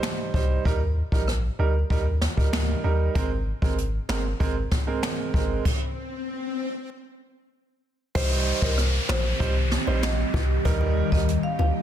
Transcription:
Already playing: grand piano G3 D#4 C5
0.03 finger snap, snare
0.34 sub bass C2, grand piano G3 D#4 C5, kick
0.65 sub bass D#2, grand piano G3 D#4 A#4, kick
1.12 sub bass A#1, grand piano G3 D#4 A#4, kick
1.28 cross-stick
1.59 sub bass D2, grand piano G3 D#4 A#4
1.90 sub bass D#2, grand piano G3 D#4 A#4, kick
2.21 snare
2.37 sub bass D2, grand piano G3 D#4 A#4, kick
2.53 finger snap, snare
2.84 sub bass D#2, grand piano G3 D#4 A#4
3.15 sub bass G#1, grand piano G#3 C4 A#4, kick, closed hi-hat, swell
3.62 sub bass G#1, grand piano G#3 C4 A#4, kick
3.78 closed hi-hat
4.09 sub bass G1, grand piano G#3 C4 A#4, finger snap, snare
4.40 sub bass G#1, grand piano G#3 C4 A#4, kick, closed hi-hat
4.71 kick, snare
4.87 grand piano G#3 C4 A#4
5.03 finger snap, snare, closed hi-hat
5.34 sub bass G#1, grand piano G#3 C4 A#4, kick
5.65 kick, crash
8.15 sub bass C2, ambient pad D#3 G3 C4 G4, grand piano G3 D#4 C5, marimba C5, kick, crash, high bongo, downlifter
8.31 high bongo
8.62 sub bass C2, grand piano G3 D#4 C5, marimba A#4, kick
8.78 cross-stick, closed hi-hat
9.09 sub bass A#1, marimba C5, finger snap, snare, high bongo, low bongo
9.40 sub bass C2, grand piano G3 D#4 C5, kick, closed hi-hat
9.71 snare
9.87 sub bass A#1, grand piano G3 D#4 C5, high bongo
10.03 marimba D#5, finger snap, snare, closed hi-hat
10.34 sub bass C2, kick, high bongo, low bongo
10.65 sub bass D#2, grand piano G3 D#4 A#4, ambient pad A#3 G4, kick, closed hi-hat, high bongo
10.81 high bongo
11.12 sub bass D#2, grand piano G3 D#4 A#4, marimba D#5, kick
11.28 closed hi-hat
11.43 marimba F5
11.59 sub bass D2, marimba F5, high bongo, low bongo

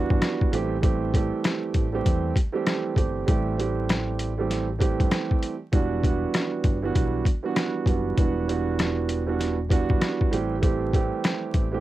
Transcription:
Already playing: grand piano E3 G3 B3 D4 F#4
0.10 fingered electric bass G1, kick
0.22 cross-stick, snare, closed hi-hat
0.41 kick
0.52 fingered electric bass A1, grand piano E3 G3 A3 C4 G4, closed hi-hat
0.81 grand piano E3 G3 A3 C4 G4, kick, closed hi-hat
1.13 grand piano E3 G3 A3 C4 G4, kick, closed hi-hat
1.44 cross-stick, snare, closed hi-hat
1.74 fingered electric bass A1, kick, closed hi-hat
1.92 grand piano E3 G3 A3 C4 G4
2.06 fingered electric bass E2, kick, closed hi-hat
2.36 kick, closed hi-hat
2.52 grand piano E3 G3 A3 C4 G4
2.67 cross-stick, snare, closed hi-hat
2.95 fingered electric bass G1, grand piano E3 G3 A3 C4 G4, kick, closed hi-hat
3.26 fingered electric bass A1, grand piano E3 G3 A3 C4 G4, kick, closed hi-hat
3.58 grand piano E3 G3 A3 C4 G4, closed hi-hat
3.89 cross-stick, snare, closed hi-hat
4.19 closed hi-hat
4.38 grand piano E3 G3 A3 C4 G4
4.50 snare, closed hi-hat
4.79 grand piano E3 G3 A3 C4 G4, kick, closed hi-hat
5.00 fingered electric bass G1, kick, closed hi-hat
5.11 cross-stick, snare, closed hi-hat
5.31 kick
5.43 closed hi-hat
5.72 fingered electric bass E1, grand piano E3 G3 B3 D4 F#4, kick, closed hi-hat
6.02 grand piano E3 G3 B3 D4 F#4, kick, closed hi-hat
6.34 cross-stick, snare, closed hi-hat
6.64 fingered electric bass G1, kick, closed hi-hat
6.82 grand piano E3 G3 B3 D4 F#4
6.95 fingered electric bass B1, kick, closed hi-hat
7.25 kick, closed hi-hat
7.43 grand piano E3 G3 B3 D4 F#4
7.56 cross-stick, snare, closed hi-hat
7.86 fingered electric bass F#1, grand piano E3 G3 B3 D4 F#4, kick, closed hi-hat
8.16 fingered electric bass E1, grand piano E3 G3 B3 D4 F#4, kick, closed hi-hat
8.48 grand piano E3 G3 B3 D4 F#4, closed hi-hat
8.79 cross-stick, snare, closed hi-hat
9.09 closed hi-hat
9.26 grand piano E3 G3 B3 D4 F#4
9.40 snare, closed hi-hat
9.69 grand piano E3 G3 B3 D4 F#4, kick, closed hi-hat
9.90 fingered electric bass G1, kick
10.01 cross-stick, snare, closed hi-hat
10.21 kick
10.31 fingered electric bass A1, grand piano E3 G3 A3 C4 G4, closed hi-hat
10.61 grand piano E3 G3 A3 C4 G4, kick, closed hi-hat
10.93 grand piano E3 G3 A3 C4 G4, kick, closed hi-hat
11.24 cross-stick, snare, closed hi-hat
11.54 fingered electric bass A1, kick, closed hi-hat
11.72 grand piano E3 G3 A3 C4 G4

